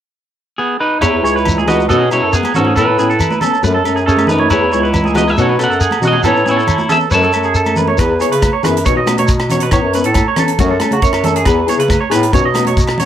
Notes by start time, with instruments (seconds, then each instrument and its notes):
0.58 clean electric guitar B3 G#4
0.80 clean electric guitar D#4 B4
1.01 bass clarinet E2, steel-string acoustic guitar B3 E4 G#4, clean electric guitar E4 B4 C#5, low agogo, shekere
1.13 bass clarinet E2
1.23 bass clarinet C#2, steel-string acoustic guitar E4 G#4, clean electric guitar C#5, shekere
1.36 clean electric guitar B4, shekere
1.45 low conga, low agogo, shekere
1.57 clean electric guitar G#4, high conga, shekere
1.66 steel-string acoustic guitar E4 G#4, clean electric guitar F#4 B4 D#5, low conga, low agogo, shekere
1.80 shekere
1.89 bass clarinet B2, steel-string acoustic guitar D#3 B3 C#4 F#4, clean electric guitar F#4 A4 D#5, high conga, shekere
2.00 clean electric guitar G#4
2.11 bass clarinet B2, steel-string acoustic guitar B3 C#4 F#4, clean electric guitar E4 C#5, low agogo, shekere
2.23 bass clarinet F#2, clean electric guitar A4
2.33 clean electric guitar B3 G#4, shekere
2.43 high conga, low agogo, shekere
2.54 bass clarinet G#2, steel-string acoustic guitar B3 C#4 F#4, clean electric guitar C#4 F#4 A4, low conga, shekere
2.65 clean electric guitar G#4, high conga
2.76 bass clarinet A2, steel-string acoustic guitar E3 B3 C#4 A4, clean electric guitar E4 A4 B4, low agogo, shekere
2.88 bass clarinet A2
2.98 bass clarinet A2, steel-string acoustic guitar B3 C#4 A4, clean electric guitar G#4, shekere
3.10 clean electric guitar A4, shekere
3.19 low conga, low agogo, shekere
3.30 clean electric guitar B4, high conga, shekere
3.41 steel-string acoustic guitar B3 C#4 A4, clean electric guitar A4, low conga, low agogo, shekere
3.54 shekere
3.63 bass clarinet F#2, steel-string acoustic guitar F#3 A3 C#4 A4, clean electric guitar B4, high conga, shekere
3.74 clean electric guitar A4
3.84 bass clarinet F#2, steel-string acoustic guitar A3 C#4 A4, low agogo, shekere
3.96 clean electric guitar G#4, shekere
4.06 clean electric guitar C#4 G#4 A4, shekere
4.17 high conga, low agogo, shekere
4.27 steel-string acoustic guitar C#4 A4, clean electric guitar D#4 B4, low conga, shekere
4.31 steel-string acoustic guitar A3, clean electric guitar B4
4.38 clean electric guitar C#5, high conga
4.49 bass clarinet E2, steel-string acoustic guitar E3 B3 E4 G#4, clean electric guitar E4 B4 C#5, low agogo, shekere
4.62 bass clarinet E2
4.72 bass clarinet C#2, steel-string acoustic guitar B3 E4 G#4, clean electric guitar C#5, shekere
4.83 clean electric guitar B4, shekere
4.93 low conga, low agogo, shekere
5.04 clean electric guitar G#4, high conga, shekere
5.14 steel-string acoustic guitar B3 E4 G#4, clean electric guitar F#4 B4 D#5, low conga, low agogo, shekere
5.28 clean electric guitar G#4 E5, shekere
5.36 bass clarinet B2, steel-string acoustic guitar D#3 B3 C#4 F#4, clean electric guitar F#4 A4, high conga, shekere
5.42 clean electric guitar C#5
5.49 clean electric guitar B4
5.58 bass clarinet B2, steel-string acoustic guitar B3 C#4 F#4, clean electric guitar A4, low agogo, shekere
5.64 clean electric guitar F#5
5.69 bass clarinet F#2, clean electric guitar A4, shekere
5.81 clean electric guitar G#4, shekere
5.91 high conga, low agogo, shekere
6.01 bass clarinet B2, steel-string acoustic guitar B3 C#4 F#4, clean electric guitar F#4, low conga, shekere
6.07 clean electric guitar D#5
6.13 clean electric guitar G#4, high conga
6.23 bass clarinet A2, steel-string acoustic guitar E3 B3 C#4, clean electric guitar E4 A4, low agogo, shekere
6.28 clean electric guitar C#5
6.36 bass clarinet A2, shekere
6.46 bass clarinet A2, steel-string acoustic guitar B3 C#4, clean electric guitar E4 G#4, high conga, shekere
6.51 clean electric guitar C#5
6.56 clean electric guitar A4, shekere
6.67 low conga, low agogo, shekere
6.78 muted clean electric guitar stroke, high conga, shekere
6.89 steel-string acoustic guitar B3 C#4, clean electric guitar G#4 A4 E5, low conga, low agogo, shekere
7.11 bass clarinet F#2, steel-string acoustic guitar F#3 A3, clean electric guitar B4 C#5 A5, muted steel-string acoustic guitar stroke, shekere
7.23 clean electric guitar A4, shekere
7.33 bass clarinet F#2, steel-string acoustic guitar A3, low agogo, shekere
7.43 clean electric guitar G#4, shekere
7.55 clean electric guitar A4, shekere
7.66 high conga, low agogo, shekere
7.76 steel-string acoustic guitar C#4, clean electric guitar B4, low conga, shekere
7.80 steel-string acoustic guitar A3
7.87 clean electric guitar C#5, high conga
7.98 bass clarinet E2, steel-string acoustic guitar E3 B3 E4 G#4, clean electric guitar B4, kick, cross-stick, closed hi-hat, low agogo, shekere
8.20 steel-string acoustic guitar B3 E4 G#4, clean electric guitar C#5, closed hi-hat, shekere
8.31 bass clarinet C#3, clean electric guitar B4, closed hi-hat
8.42 kick, cross-stick, closed hi-hat, high conga, low agogo, shekere
8.53 clean electric guitar C#5
8.63 bass clarinet F#2, steel-string acoustic guitar B3 E4 G#4, clean electric guitar B4, cross-stick, closed hi-hat, low conga, low agogo, shekere
8.77 closed hi-hat
8.85 bass clarinet B2, steel-string acoustic guitar D#3 B3 C#4 F#4, clean electric guitar C#5, kick, closed hi-hat, shekere
8.95 bass clarinet B2, clean electric guitar D#5
9.06 steel-string acoustic guitar B3 C#4 F#4, cross-stick, closed hi-hat, high conga, low agogo, shekere
9.18 bass clarinet B2, clean electric guitar C#5, closed hi-hat, high conga
9.28 muted clean electric guitar stroke, kick, closed hi-hat, shekere
9.40 cross-stick, low agogo
9.49 steel-string acoustic guitar B3 C#4 F#4, clean electric guitar C#5, closed hi-hat, low conga, shekere
9.60 bass clarinet B2, clean electric guitar B4, closed hi-hat
9.71 bass clarinet A2, steel-string acoustic guitar E3 B3 C#4, clean electric guitar C#5, kick, cross-stick, closed hi-hat, low agogo, shekere
9.82 bass clarinet F#2
9.93 steel-string acoustic guitar B3 C#4, clean electric guitar B4, closed hi-hat, shekere
10.04 bass clarinet A2, clean electric guitar A4, closed hi-hat
10.14 kick, cross-stick, closed hi-hat, high conga, low agogo, shekere
10.28 clean electric guitar C#5
10.36 steel-string acoustic guitar C#4, clean electric guitar A4, cross-stick, closed hi-hat, low conga, low agogo, shekere
10.41 steel-string acoustic guitar B3
10.48 closed hi-hat
10.58 bass clarinet F#2, steel-string acoustic guitar F#3 A3 C#4, clean electric guitar F#4, kick, closed hi-hat, shekere
10.71 clean electric guitar A4
10.80 steel-string acoustic guitar C#4, cross-stick, closed hi-hat, high conga, low agogo, shekere
10.84 steel-string acoustic guitar A3
10.91 bass clarinet C#3, clean electric guitar F#4, closed hi-hat, high conga
11.02 bass clarinet F#2, clean electric guitar C#5, kick, closed hi-hat, shekere
11.13 cross-stick, low agogo
11.23 steel-string acoustic guitar A3 C#4, clean electric guitar A4, closed hi-hat, low conga, shekere
11.36 clean electric guitar G#4, closed hi-hat
11.45 bass clarinet E2, steel-string acoustic guitar E3 B3 E4 G#4, clean electric guitar B4, kick, cross-stick, closed hi-hat, low agogo, shekere
11.67 steel-string acoustic guitar B3 E4 G#4, clean electric guitar C#5, closed hi-hat, shekere
11.78 bass clarinet C#3, clean electric guitar B4, closed hi-hat
11.88 kick, cross-stick, closed hi-hat, high conga, low agogo, shekere
12.00 clean electric guitar C#5
12.10 bass clarinet A2, steel-string acoustic guitar B3 E4 G#4, clean electric guitar B4, cross-stick, closed hi-hat, low agogo
12.14 shekere
12.23 closed hi-hat
12.32 bass clarinet B2, steel-string acoustic guitar D#3 B3 C#4 F#4, clean electric guitar C#5, kick, closed hi-hat, shekere
12.44 bass clarinet B2, clean electric guitar D#5
12.54 steel-string acoustic guitar F#4, cross-stick, closed hi-hat, high conga, low agogo, shekere
12.58 steel-string acoustic guitar B3 C#4
12.65 bass clarinet B2, clean electric guitar C#5, closed hi-hat, high conga
12.77 kick, closed hi-hat, shekere
12.87 cross-stick, low agogo
12.98 steel-string acoustic guitar C#4 F#4, clean electric guitar C#5, closed hi-hat, low conga, shekere